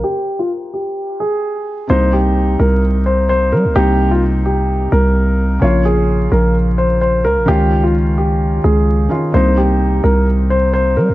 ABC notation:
X:1
M:4/4
L:1/16
Q:1/4=129
K:Cphr
V:1 name="Grand piano"
G3 F z2 G4 A6 | c2 G4 B2 z2 c2 c2 B2 | G3 F z2 G4 B6 | d2 A4 B2 z2 c2 c2 B2 |
G3 F z2 G4 A6 | c2 G4 B2 z2 c2 c2 B2 |]
V:2 name="Felt piano"
z16 | [C,B,E]16 | [C,B,E]16 | [D,B,F]16 |
[E,DF]12- [E,DF]2 [E,DF]2 | [C,B,E]16 |]
V:3 name="808-style bass" clef=bass
z16 | C,,6 C,,8 G, C,, | C,,8- C,,2 C,,6 | B,,,6 B,,,8 D,, B,,, |
D,,8- D,,2 D,,4 z2 | C,,6 C,,8 G, C,, |]